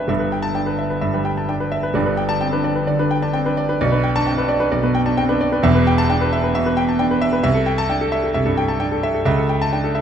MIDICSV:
0, 0, Header, 1, 2, 480
1, 0, Start_track
1, 0, Tempo, 462963
1, 92, Time_signature, 4, 2, 24, 8
1, 3932, Tempo, 455581
1, 10486, End_track
2, 0, Start_track
2, 0, Title_t, "Grand piano"
2, 0, Program_c, 0, 0
2, 0, Control_c, 0, 64, 127
2, 0, Note_on_c, 0, 28, 74
2, 0, Note_on_c, 0, 40, 74
2, 0, Note_on_c, 0, 47, 59
2, 0, Note_on_c, 0, 62, 52
2, 0, Note_on_c, 0, 71, 60
2, 0, Note_on_c, 0, 76, 69
2, 0, Note_on_c, 0, 79, 66
2, 0, Note_on_c, 0, 81, 56
2, 81, Note_on_c, 0, 31, 71
2, 92, Note_on_c, 0, 43, 76
2, 93, Note_off_c, 0, 76, 0
2, 93, Note_on_c, 0, 76, 71
2, 114, Control_c, 0, 64, 0
2, 117, Note_off_c, 0, 47, 0
2, 117, Note_off_c, 0, 79, 0
2, 118, Note_off_c, 0, 28, 0
2, 118, Note_off_c, 0, 62, 0
2, 122, Note_off_c, 0, 71, 0
2, 123, Note_off_c, 0, 40, 0
2, 124, Note_off_c, 0, 81, 0
2, 204, Note_on_c, 0, 71, 62
2, 285, Note_off_c, 0, 76, 0
2, 303, Control_c, 0, 64, 127
2, 334, Note_on_c, 0, 79, 64
2, 401, Note_off_c, 0, 71, 0
2, 440, Note_on_c, 0, 81, 80
2, 526, Note_off_c, 0, 79, 0
2, 567, Note_off_c, 0, 81, 0
2, 567, Note_on_c, 0, 62, 50
2, 568, Note_on_c, 0, 79, 66
2, 688, Note_on_c, 0, 71, 64
2, 691, Note_off_c, 0, 62, 0
2, 765, Note_off_c, 0, 79, 0
2, 815, Note_on_c, 0, 76, 63
2, 885, Note_off_c, 0, 71, 0
2, 935, Note_on_c, 0, 71, 60
2, 1009, Note_off_c, 0, 76, 0
2, 1024, Note_off_c, 0, 31, 0
2, 1029, Note_off_c, 0, 43, 0
2, 1052, Note_on_c, 0, 76, 67
2, 1056, Note_on_c, 0, 43, 68
2, 1129, Note_off_c, 0, 71, 0
2, 1176, Note_on_c, 0, 55, 64
2, 1177, Note_on_c, 0, 71, 65
2, 1248, Note_off_c, 0, 76, 0
2, 1295, Note_on_c, 0, 79, 72
2, 1370, Note_off_c, 0, 55, 0
2, 1371, Note_off_c, 0, 71, 0
2, 1425, Note_on_c, 0, 81, 58
2, 1489, Note_off_c, 0, 79, 0
2, 1540, Note_on_c, 0, 62, 56
2, 1542, Note_off_c, 0, 81, 0
2, 1542, Note_on_c, 0, 79, 70
2, 1660, Note_off_c, 0, 62, 0
2, 1663, Note_on_c, 0, 71, 64
2, 1733, Note_off_c, 0, 79, 0
2, 1779, Note_on_c, 0, 76, 71
2, 1853, Note_off_c, 0, 71, 0
2, 1899, Note_on_c, 0, 71, 67
2, 1971, Note_off_c, 0, 76, 0
2, 1988, Note_off_c, 0, 43, 0
2, 2011, Note_on_c, 0, 31, 77
2, 2018, Note_off_c, 0, 71, 0
2, 2020, Note_on_c, 0, 74, 73
2, 2023, Note_on_c, 0, 43, 85
2, 2039, Control_c, 0, 64, 0
2, 2135, Note_on_c, 0, 71, 68
2, 2137, Note_on_c, 0, 62, 63
2, 2207, Control_c, 0, 64, 127
2, 2209, Note_off_c, 0, 74, 0
2, 2253, Note_on_c, 0, 79, 70
2, 2326, Note_off_c, 0, 71, 0
2, 2327, Note_off_c, 0, 62, 0
2, 2371, Note_on_c, 0, 81, 85
2, 2372, Note_on_c, 0, 62, 67
2, 2445, Note_off_c, 0, 79, 0
2, 2492, Note_off_c, 0, 81, 0
2, 2497, Note_on_c, 0, 79, 70
2, 2498, Note_on_c, 0, 60, 54
2, 2565, Note_off_c, 0, 62, 0
2, 2616, Note_off_c, 0, 60, 0
2, 2616, Note_on_c, 0, 62, 68
2, 2620, Note_on_c, 0, 71, 67
2, 2687, Note_off_c, 0, 79, 0
2, 2740, Note_on_c, 0, 74, 71
2, 2808, Note_off_c, 0, 62, 0
2, 2810, Note_off_c, 0, 71, 0
2, 2857, Note_on_c, 0, 62, 65
2, 2858, Note_on_c, 0, 71, 62
2, 2930, Note_off_c, 0, 74, 0
2, 2943, Note_off_c, 0, 31, 0
2, 2950, Note_off_c, 0, 43, 0
2, 2978, Note_on_c, 0, 74, 74
2, 2980, Note_on_c, 0, 50, 63
2, 3050, Note_off_c, 0, 62, 0
2, 3050, Note_off_c, 0, 71, 0
2, 3103, Note_on_c, 0, 71, 70
2, 3104, Note_on_c, 0, 62, 68
2, 3170, Note_off_c, 0, 74, 0
2, 3171, Note_off_c, 0, 50, 0
2, 3222, Note_on_c, 0, 79, 78
2, 3292, Note_off_c, 0, 71, 0
2, 3293, Note_off_c, 0, 62, 0
2, 3341, Note_on_c, 0, 62, 65
2, 3343, Note_on_c, 0, 81, 64
2, 3411, Note_off_c, 0, 79, 0
2, 3454, Note_on_c, 0, 60, 61
2, 3457, Note_on_c, 0, 79, 76
2, 3460, Note_off_c, 0, 81, 0
2, 3531, Note_off_c, 0, 62, 0
2, 3575, Note_off_c, 0, 60, 0
2, 3586, Note_on_c, 0, 71, 72
2, 3587, Note_on_c, 0, 62, 63
2, 3648, Note_off_c, 0, 79, 0
2, 3704, Note_on_c, 0, 74, 81
2, 3772, Note_off_c, 0, 62, 0
2, 3772, Note_off_c, 0, 71, 0
2, 3826, Note_on_c, 0, 71, 70
2, 3828, Note_on_c, 0, 62, 69
2, 3890, Note_off_c, 0, 74, 0
2, 3940, Note_off_c, 0, 62, 0
2, 3940, Note_off_c, 0, 71, 0
2, 3948, Note_on_c, 0, 74, 81
2, 3951, Note_on_c, 0, 35, 98
2, 3955, Control_c, 0, 64, 0
2, 4067, Note_on_c, 0, 62, 69
2, 4067, Note_on_c, 0, 71, 74
2, 4098, Control_c, 0, 64, 127
2, 4134, Note_off_c, 0, 74, 0
2, 4188, Note_on_c, 0, 79, 75
2, 4254, Note_off_c, 0, 62, 0
2, 4254, Note_off_c, 0, 71, 0
2, 4314, Note_on_c, 0, 62, 77
2, 4315, Note_on_c, 0, 81, 92
2, 4375, Note_off_c, 0, 79, 0
2, 4426, Note_off_c, 0, 81, 0
2, 4430, Note_on_c, 0, 79, 76
2, 4431, Note_on_c, 0, 60, 59
2, 4498, Note_off_c, 0, 62, 0
2, 4544, Note_off_c, 0, 60, 0
2, 4548, Note_on_c, 0, 62, 67
2, 4550, Note_on_c, 0, 71, 70
2, 4616, Note_off_c, 0, 79, 0
2, 4662, Note_on_c, 0, 74, 78
2, 4735, Note_off_c, 0, 62, 0
2, 4736, Note_off_c, 0, 71, 0
2, 4782, Note_on_c, 0, 62, 68
2, 4783, Note_on_c, 0, 71, 74
2, 4852, Note_off_c, 0, 74, 0
2, 4878, Note_off_c, 0, 35, 0
2, 4905, Note_on_c, 0, 35, 82
2, 4905, Note_on_c, 0, 74, 80
2, 4972, Note_off_c, 0, 62, 0
2, 4973, Note_off_c, 0, 71, 0
2, 5029, Note_on_c, 0, 47, 73
2, 5029, Note_on_c, 0, 71, 74
2, 5094, Note_off_c, 0, 74, 0
2, 5147, Note_on_c, 0, 79, 83
2, 5215, Note_off_c, 0, 47, 0
2, 5215, Note_off_c, 0, 71, 0
2, 5266, Note_on_c, 0, 62, 75
2, 5266, Note_on_c, 0, 81, 70
2, 5334, Note_off_c, 0, 79, 0
2, 5381, Note_off_c, 0, 81, 0
2, 5387, Note_on_c, 0, 60, 65
2, 5389, Note_on_c, 0, 79, 84
2, 5453, Note_off_c, 0, 62, 0
2, 5502, Note_off_c, 0, 60, 0
2, 5509, Note_on_c, 0, 62, 76
2, 5510, Note_on_c, 0, 71, 77
2, 5575, Note_off_c, 0, 79, 0
2, 5634, Note_on_c, 0, 74, 83
2, 5695, Note_off_c, 0, 62, 0
2, 5696, Note_off_c, 0, 71, 0
2, 5755, Note_on_c, 0, 71, 76
2, 5757, Note_on_c, 0, 62, 74
2, 5818, Note_off_c, 0, 74, 0
2, 5833, Note_off_c, 0, 35, 0
2, 5862, Note_on_c, 0, 28, 98
2, 5867, Note_off_c, 0, 71, 0
2, 5868, Note_off_c, 0, 62, 0
2, 5869, Note_on_c, 0, 40, 100
2, 5874, Note_on_c, 0, 76, 85
2, 5875, Control_c, 0, 64, 0
2, 5993, Note_on_c, 0, 71, 78
2, 6045, Control_c, 0, 64, 127
2, 6059, Note_off_c, 0, 76, 0
2, 6121, Note_on_c, 0, 79, 86
2, 6179, Note_off_c, 0, 71, 0
2, 6238, Note_on_c, 0, 81, 94
2, 6303, Note_off_c, 0, 79, 0
2, 6350, Note_off_c, 0, 81, 0
2, 6356, Note_on_c, 0, 62, 67
2, 6360, Note_on_c, 0, 79, 84
2, 6469, Note_off_c, 0, 62, 0
2, 6480, Note_on_c, 0, 71, 80
2, 6542, Note_off_c, 0, 79, 0
2, 6602, Note_on_c, 0, 76, 77
2, 6662, Note_off_c, 0, 71, 0
2, 6718, Note_on_c, 0, 71, 74
2, 6782, Note_off_c, 0, 76, 0
2, 6792, Note_off_c, 0, 28, 0
2, 6796, Note_off_c, 0, 40, 0
2, 6836, Note_on_c, 0, 47, 75
2, 6837, Note_on_c, 0, 76, 87
2, 6899, Note_off_c, 0, 71, 0
2, 6956, Note_on_c, 0, 71, 76
2, 7018, Note_off_c, 0, 47, 0
2, 7018, Note_off_c, 0, 76, 0
2, 7067, Note_on_c, 0, 79, 85
2, 7138, Note_off_c, 0, 71, 0
2, 7191, Note_on_c, 0, 81, 71
2, 7253, Note_off_c, 0, 79, 0
2, 7303, Note_off_c, 0, 81, 0
2, 7303, Note_on_c, 0, 79, 86
2, 7304, Note_on_c, 0, 62, 69
2, 7419, Note_off_c, 0, 62, 0
2, 7428, Note_on_c, 0, 71, 77
2, 7491, Note_off_c, 0, 79, 0
2, 7538, Note_on_c, 0, 76, 88
2, 7612, Note_off_c, 0, 71, 0
2, 7654, Note_on_c, 0, 71, 79
2, 7728, Note_off_c, 0, 76, 0
2, 7770, Note_on_c, 0, 76, 92
2, 7772, Note_on_c, 0, 36, 97
2, 7774, Note_off_c, 0, 71, 0
2, 7794, Control_c, 0, 64, 0
2, 7882, Note_on_c, 0, 69, 76
2, 7942, Control_c, 0, 64, 127
2, 7963, Note_off_c, 0, 76, 0
2, 8009, Note_on_c, 0, 79, 82
2, 8080, Note_off_c, 0, 69, 0
2, 8134, Note_on_c, 0, 81, 94
2, 8203, Note_off_c, 0, 79, 0
2, 8252, Note_on_c, 0, 62, 63
2, 8254, Note_off_c, 0, 81, 0
2, 8254, Note_on_c, 0, 79, 75
2, 8372, Note_off_c, 0, 62, 0
2, 8378, Note_on_c, 0, 69, 79
2, 8445, Note_off_c, 0, 79, 0
2, 8492, Note_on_c, 0, 76, 82
2, 8566, Note_off_c, 0, 69, 0
2, 8613, Note_on_c, 0, 69, 70
2, 8682, Note_off_c, 0, 76, 0
2, 8701, Note_off_c, 0, 36, 0
2, 8727, Note_on_c, 0, 76, 80
2, 8732, Note_on_c, 0, 36, 82
2, 8803, Note_off_c, 0, 69, 0
2, 8844, Note_on_c, 0, 43, 69
2, 8845, Note_on_c, 0, 69, 74
2, 8920, Note_off_c, 0, 76, 0
2, 8971, Note_on_c, 0, 79, 80
2, 9038, Note_off_c, 0, 43, 0
2, 9039, Note_off_c, 0, 69, 0
2, 9085, Note_on_c, 0, 81, 68
2, 9162, Note_off_c, 0, 79, 0
2, 9206, Note_on_c, 0, 62, 66
2, 9207, Note_off_c, 0, 81, 0
2, 9207, Note_on_c, 0, 79, 81
2, 9328, Note_off_c, 0, 62, 0
2, 9332, Note_on_c, 0, 69, 72
2, 9400, Note_off_c, 0, 79, 0
2, 9454, Note_on_c, 0, 76, 80
2, 9523, Note_off_c, 0, 69, 0
2, 9571, Note_on_c, 0, 69, 73
2, 9645, Note_off_c, 0, 76, 0
2, 9663, Note_off_c, 0, 36, 0
2, 9687, Note_on_c, 0, 37, 95
2, 9691, Note_off_c, 0, 69, 0
2, 9691, Note_on_c, 0, 76, 84
2, 9712, Control_c, 0, 64, 0
2, 9813, Note_on_c, 0, 69, 70
2, 9864, Control_c, 0, 64, 127
2, 9884, Note_off_c, 0, 76, 0
2, 9938, Note_on_c, 0, 79, 74
2, 10005, Note_off_c, 0, 69, 0
2, 10067, Note_on_c, 0, 81, 88
2, 10128, Note_off_c, 0, 79, 0
2, 10180, Note_off_c, 0, 81, 0
2, 10183, Note_on_c, 0, 62, 58
2, 10185, Note_on_c, 0, 79, 73
2, 10298, Note_off_c, 0, 62, 0
2, 10302, Note_on_c, 0, 69, 67
2, 10372, Note_off_c, 0, 79, 0
2, 10418, Note_on_c, 0, 76, 70
2, 10486, Note_off_c, 0, 37, 0
2, 10486, Note_off_c, 0, 69, 0
2, 10486, Note_off_c, 0, 76, 0
2, 10486, End_track
0, 0, End_of_file